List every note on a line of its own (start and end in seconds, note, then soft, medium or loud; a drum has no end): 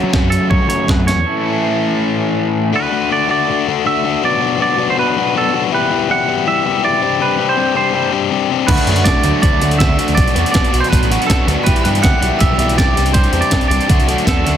0.00 1.24 F#2 medium
0.00 1.23 C#3 medium
0.00 1.24 F#3 medium
0.00 0.11 F#3 medium
0.00 1.25 A3 medium
0.00 1.25 C#4 medium
0.00 1.26 F#4 medium
0.13 kick loud
0.13 snare loud
0.22 0.37 F#2 medium
0.30 0.50 A4 medium
0.30 closed hi-hat medium
0.50 0.58 F#3 medium
0.50 0.68 C#5 loud
0.50 kick loud
0.68 0.83 F#3 medium
0.68 0.90 C#5 loud
0.68 closed hi-hat medium
0.88 1.07 B4 medium
0.88 kick loud
0.88 snare loud
0.96 1.12 F#2 medium
1.07 1.77 C#5 medium
1.07 snare medium
1.07 closed hi-hat medium
1.15 1.23 E2 medium
1.24 2.73 A2 medium
1.24 2.72 E3 medium
1.24 2.73 A3 medium
1.24 2.73 C#4 medium
1.24 2.74 A4 medium
1.28 2.76 E4 medium
2.73 2.90 D3 medium
2.73 2.90 A3 medium
2.73 2.92 D4 loud
2.73 2.93 F#4 loud
2.73 3.12 B4 medium
2.91 3.09 D3 medium
2.91 3.10 A3 medium
2.91 3.11 D4 medium
2.91 3.11 F#4 loud
3.10 3.27 D3 medium
3.10 3.28 A3 medium
3.10 3.29 D4 medium
3.10 3.30 F#4 medium
3.10 3.30 D5 medium
3.28 3.47 D3 loud
3.28 3.48 A3 loud
3.28 3.49 D4 loud
3.28 3.49 F#4 loud
3.28 3.86 D5 loud
3.48 3.66 D3 medium
3.48 3.67 A3 medium
3.48 3.68 D4 medium
3.48 3.68 F#4 loud
3.68 3.84 D3 medium
3.68 3.84 A3 medium
3.68 3.86 D4 medium
3.68 3.85 F#4 medium
3.85 4.03 D3 loud
3.85 4.03 A3 loud
3.85 4.05 D4 loud
3.85 4.04 F#4 loud
3.85 4.24 E5 loud
4.04 4.21 D3 medium
4.04 4.22 A3 medium
4.04 4.24 D4 loud
4.04 4.22 F#4 loud
4.22 4.39 B2 medium
4.22 4.39 F#3 loud
4.22 4.40 B3 loud
4.22 4.41 D4 loud
4.22 4.40 F#4 loud
4.22 4.61 D5 loud
4.40 4.58 B2 medium
4.40 4.58 F#3 medium
4.40 4.59 B3 medium
4.40 4.60 D4 loud
4.40 4.59 F#4 medium
4.58 4.76 B2 medium
4.58 4.76 F#3 medium
4.58 4.77 B3 medium
4.58 4.79 D4 loud
4.58 4.78 F#4 medium
4.58 4.87 D5 medium
4.77 4.95 B2 medium
4.77 4.96 F#3 medium
4.77 4.97 B3 loud
4.77 4.97 D4 loud
4.77 4.97 F#4 loud
4.90 4.98 C5 medium
4.97 5.15 B2 medium
4.97 5.16 F#3 medium
4.97 5.17 B3 medium
4.97 5.18 D4 loud
4.97 5.17 F#4 loud
4.97 5.36 B4 loud
5.17 5.33 B2 medium
5.17 5.33 F#3 medium
5.17 5.35 B3 medium
5.17 5.36 D4 medium
5.17 5.35 F#4 loud
5.34 5.52 B2 loud
5.34 5.53 F#3 loud
5.34 5.53 B3 loud
5.34 5.55 D4 loud
5.34 5.54 F#4 loud
5.34 5.62 A4 medium
5.53 5.70 B2 medium
5.53 5.71 F#3 medium
5.53 5.71 B3 loud
5.53 5.72 D4 loud
5.53 5.71 F#4 loud
5.71 5.88 B2 medium
5.71 5.89 E3 loud
5.71 5.91 G3 loud
5.71 5.90 E4 loud
5.71 5.92 G4 loud
5.71 6.11 B4 loud
5.89 6.07 B2 loud
5.89 6.08 E3 medium
5.89 6.10 G3 medium
5.89 6.09 E4 loud
5.89 6.11 G4 medium
6.08 6.26 B2 medium
6.08 6.27 E3 medium
6.08 6.28 G3 medium
6.08 6.28 E4 medium
6.08 6.29 G4 medium
6.08 6.45 F#5 medium
6.27 6.45 B2 loud
6.27 6.46 E3 loud
6.27 6.46 G3 loud
6.27 6.47 E4 loud
6.27 6.47 G4 loud
6.46 6.63 B2 medium
6.46 6.64 E3 loud
6.46 6.64 G3 medium
6.46 6.64 E4 medium
6.46 6.65 G4 loud
6.46 6.84 E5 loud
6.64 6.82 B2 medium
6.64 6.82 E3 medium
6.64 6.83 G3 medium
6.64 6.84 E4 loud
6.64 6.84 G4 loud
6.83 7.00 B2 loud
6.83 7.01 E3 loud
6.83 7.01 G3 loud
6.83 7.01 E4 loud
6.83 7.02 G4 loud
6.83 7.22 D5 loud
7.01 7.18 C3 loud
7.01 7.19 G3 medium
7.01 7.19 C4 loud
7.01 7.20 D4 loud
7.01 7.20 G4 loud
7.19 7.36 C3 loud
7.19 7.37 G3 medium
7.19 7.37 C4 loud
7.19 7.39 D4 medium
7.19 7.39 G4 loud
7.19 7.49 B4 loud
7.37 7.54 C3 medium
7.37 7.56 G3 medium
7.37 7.56 C4 medium
7.37 7.57 D4 medium
7.37 7.57 G4 medium
7.49 7.75 C5 medium
7.56 7.73 C3 medium
7.56 7.73 G3 medium
7.56 7.74 C4 loud
7.56 7.75 D4 medium
7.56 7.75 G4 medium
7.74 7.91 C3 medium
7.74 7.92 G3 loud
7.74 7.93 C4 loud
7.74 7.94 D4 loud
7.74 7.93 G4 loud
7.74 8.11 C5 medium
7.93 8.10 C3 medium
7.93 8.11 G3 medium
7.93 8.11 C4 medium
7.93 8.13 D4 loud
7.93 8.12 G4 medium
8.11 8.30 C3 medium
8.11 8.30 G3 medium
8.11 8.30 C4 medium
8.11 8.32 D4 loud
8.11 8.32 G4 medium
8.31 8.49 C3 loud
8.31 8.50 G3 loud
8.31 8.50 C4 loud
8.31 8.52 D4 loud
8.31 8.51 G4 loud
8.50 8.68 C3 medium
8.50 8.68 G3 medium
8.50 8.68 C4 loud
8.50 8.71 D4 loud
8.50 8.69 G4 loud
8.67 8.76 D2 loud
8.67 8.87 D3 medium
8.67 8.88 F#3 loud
8.67 9.06 B4 medium
8.67 9.03 B5 medium
8.67 kick loud
8.67 crash loud
8.71 8.87 A3 loud
8.71 8.89 D4 medium
8.71 8.89 F#4 loud
8.78 closed hi-hat medium
8.87 9.02 F#2 medium
8.87 9.05 D3 medium
8.87 9.06 F#3 medium
8.87 9.06 A3 medium
8.87 9.08 D4 medium
8.87 9.07 F#4 medium
8.87 closed hi-hat medium
8.96 closed hi-hat medium
9.04 9.13 B1 medium
9.04 9.22 D3 medium
9.04 9.24 F#3 medium
9.04 9.24 A3 loud
9.04 9.25 D4 medium
9.04 9.25 F#4 medium
9.04 9.41 D5 medium
9.04 9.40 D6 medium
9.04 kick loud
9.04 snare loud
9.04 closed hi-hat loud
9.23 9.32 D2 medium
9.23 9.41 D3 loud
9.23 9.41 F#3 loud
9.23 9.42 A3 loud
9.23 9.43 D4 loud
9.23 9.43 F#4 loud
9.23 closed hi-hat medium
9.41 9.51 D2 loud
9.41 9.60 D3 medium
9.41 9.61 F#3 medium
9.41 9.61 A3 medium
9.41 9.63 D4 medium
9.41 9.62 F#4 medium
9.41 9.78 D5 loud
9.41 9.77 D6 medium
9.41 kick loud
9.41 closed hi-hat loud
9.53 9.60 D2 medium
9.62 9.85 D2 medium
9.62 9.77 D3 medium
9.62 9.78 F#3 medium
9.62 9.79 A3 medium
9.62 9.80 D4 medium
9.62 9.80 F#4 medium
9.62 closed hi-hat medium
9.71 closed hi-hat medium
9.78 9.96 D3 loud
9.78 9.97 F#3 loud
9.78 9.97 A3 loud
9.78 9.99 D4 loud
9.78 9.98 F#4 loud
9.78 10.14 E5 medium
9.78 10.15 E6 medium
9.78 kick loud
9.78 snare loud
9.78 closed hi-hat medium
9.89 9.97 D2 medium
9.97 10.15 D3 medium
9.97 10.16 F#3 loud
9.97 10.16 A3 loud
9.97 10.17 D4 loud
9.97 10.17 F#4 loud
9.97 closed hi-hat medium
10.08 10.16 D2 medium
10.08 closed hi-hat soft
10.15 10.33 B1 loud
10.15 10.34 B2 medium
10.15 10.34 F#3 medium
10.15 10.35 B3 loud
10.15 10.36 D4 loud
10.15 10.36 F#4 loud
10.15 10.50 D5 medium
10.15 10.51 D6 medium
10.15 kick loud
10.15 closed hi-hat loud
10.28 closed hi-hat medium
10.35 10.43 E2 medium
10.35 10.53 B2 medium
10.35 10.53 F#3 medium
10.35 10.54 B3 medium
10.35 10.54 D4 medium
10.35 10.54 F#4 medium
10.35 closed hi-hat medium
10.46 closed hi-hat medium
10.52 10.62 B1 loud
10.52 10.70 B2 loud
10.52 10.71 F#3 medium
10.52 10.72 B3 medium
10.52 10.73 D4 medium
10.52 10.72 F#4 medium
10.52 10.82 D5 medium
10.52 10.79 D6 medium
10.52 kick loud
10.52 snare loud
10.52 closed hi-hat loud
10.64 closed hi-hat medium
10.71 10.81 B1 medium
10.71 10.89 B2 loud
10.71 10.89 F#3 loud
10.71 10.90 B3 loud
10.71 10.92 D4 loud
10.71 10.91 F#4 loud
10.71 closed hi-hat medium
10.80 10.90 C5 loud
10.80 10.90 C6 medium
10.80 closed hi-hat soft
10.88 11.00 B1 loud
10.88 11.09 B2 medium
10.88 11.10 F#3 medium
10.88 11.10 B3 medium
10.88 11.11 D4 loud
10.88 11.25 B4 loud
10.88 11.25 B5 medium
10.92 11.11 F#4 medium
10.92 kick loud
10.92 closed hi-hat loud
11.02 11.17 A1 medium
11.02 closed hi-hat medium
11.10 11.27 B2 medium
11.10 11.28 F#3 medium
11.10 11.28 B3 medium
11.10 11.30 D4 medium
11.10 11.30 F#4 medium
11.10 closed hi-hat medium
11.22 closed hi-hat soft
11.26 11.46 B2 loud
11.26 11.47 F#3 loud
11.26 11.47 B3 loud
11.26 11.48 D4 loud
11.26 11.54 A4 medium
11.26 11.54 A5 medium
11.26 kick loud
11.26 closed hi-hat loud
11.31 11.48 F#4 loud
11.31 snare loud
11.47 11.55 D2 loud
11.47 11.65 B2 medium
11.47 11.65 F#3 loud
11.47 11.65 B3 loud
11.47 11.67 D4 loud
11.47 11.66 F#4 loud
11.47 closed hi-hat medium
11.63 11.74 B1 loud
11.63 11.83 B2 medium
11.63 11.84 E3 medium
11.63 11.85 G3 loud
11.63 11.83 B4 loud
11.63 11.80 B5 medium
11.63 kick loud
11.63 closed hi-hat loud
11.67 11.85 E4 medium
11.67 11.85 G4 loud
11.76 closed hi-hat medium
11.81 12.00 B2 medium
11.81 11.89 B4 loud
11.81 11.90 B5 medium
11.81 closed hi-hat medium
11.85 12.00 G2 medium
11.85 12.01 E3 medium
11.85 12.02 G3 medium
11.85 12.02 E4 loud
11.85 12.03 G4 medium
11.95 closed hi-hat medium
12.01 12.11 D2 medium
12.01 12.18 B2 medium
12.01 12.18 E3 medium
12.01 12.19 G3 medium
12.01 12.20 E4 loud
12.01 12.20 G4 loud
12.01 12.40 F#5 loud
12.01 12.37 F#6 loud
12.01 kick loud
12.01 snare loud
12.01 closed hi-hat loud
12.20 12.29 B1 medium
12.20 12.38 B2 medium
12.20 12.38 E3 medium
12.20 12.39 G3 loud
12.20 12.40 E4 loud
12.20 12.40 G4 loud
12.20 closed hi-hat medium
12.39 12.48 B1 loud
12.39 12.55 B2 medium
12.39 12.57 E3 loud
12.39 12.57 G3 loud
12.39 12.57 E4 medium
12.39 12.58 G4 loud
12.39 12.77 E5 loud
12.39 12.74 E6 medium
12.39 kick loud
12.39 closed hi-hat loud
12.49 12.57 B1 medium
12.56 12.81 B1 medium
12.56 12.74 B2 medium
12.56 12.75 E3 medium
12.56 12.76 G3 loud
12.56 12.76 E4 medium
12.56 12.77 G4 medium
12.56 closed hi-hat medium
12.69 closed hi-hat medium
12.76 12.94 B2 loud
12.76 12.94 E3 loud
12.76 12.93 G3 loud
12.76 12.95 E4 loud
12.76 12.95 G4 loud
12.76 13.16 D5 loud
12.76 13.12 D6 medium
12.76 kick loud
12.76 closed hi-hat loud
12.80 snare loud
12.86 12.94 B1 loud
12.94 13.26 C2 loud
12.94 13.11 C3 loud
12.94 13.12 G3 loud
12.94 13.12 C4 loud
12.94 13.13 D4 loud
12.94 13.13 G4 loud
12.94 closed hi-hat medium
12.98 snare soft
13.06 closed hi-hat medium
13.12 13.31 C3 medium
13.12 13.32 G3 loud
13.12 13.32 C4 medium
13.12 13.33 D4 loud
13.12 13.34 G4 loud
13.12 13.43 C5 loud
13.12 13.40 C6 medium
13.12 kick loud
13.12 closed hi-hat loud
13.24 closed hi-hat soft
13.32 13.40 E2 medium
13.32 13.50 C3 medium
13.32 13.51 G3 loud
13.32 13.51 C4 medium
13.32 13.52 D4 medium
13.32 13.52 G4 loud
13.32 closed hi-hat medium
13.41 13.67 D5 loud
13.41 13.68 D6 medium
13.41 closed hi-hat soft
13.51 13.60 C2 loud
13.51 13.69 C3 medium
13.51 13.70 G3 medium
13.51 13.71 C4 medium
13.51 13.71 D4 medium
13.51 13.71 G4 medium
13.51 kick loud
13.51 snare loud
13.51 closed hi-hat loud
13.61 closed hi-hat soft
13.68 13.78 C2 loud
13.68 13.88 C3 loud
13.68 13.87 G3 loud
13.68 13.89 C4 loud
13.68 13.88 D4 loud
13.68 14.04 D5 loud
13.68 14.05 D6 medium
13.68 closed hi-hat medium
13.72 13.89 G4 loud
13.81 closed hi-hat soft
13.88 13.97 D2 loud
13.88 14.05 D3 loud
13.88 14.07 F#3 loud
13.88 14.07 A3 loud
13.88 14.07 D4 loud
13.88 14.08 F#4 loud
13.88 kick loud
13.88 closed hi-hat loud
13.99 14.14 C2 medium
13.99 closed hi-hat soft
14.07 14.24 D3 medium
14.07 14.23 F#3 medium
14.07 14.25 A3 loud
14.07 14.26 D4 medium
14.07 14.26 F#4 medium
14.07 closed hi-hat medium
14.18 closed hi-hat soft
14.25 14.43 E2 medium
14.25 14.42 D3 loud
14.25 14.43 F#3 medium
14.25 14.44 A3 loud
14.25 14.44 D4 loud
14.25 14.44 F#4 loud
14.25 14.57 A4 medium
14.25 kick loud
14.25 closed hi-hat medium
14.29 snare loud
14.43 14.57 D2 loud
14.43 14.57 D3 medium
14.43 14.57 F#3 medium
14.43 14.57 A3 medium
14.43 14.57 D4 loud
14.43 14.57 F#4 medium
14.43 closed hi-hat medium
14.48 snare soft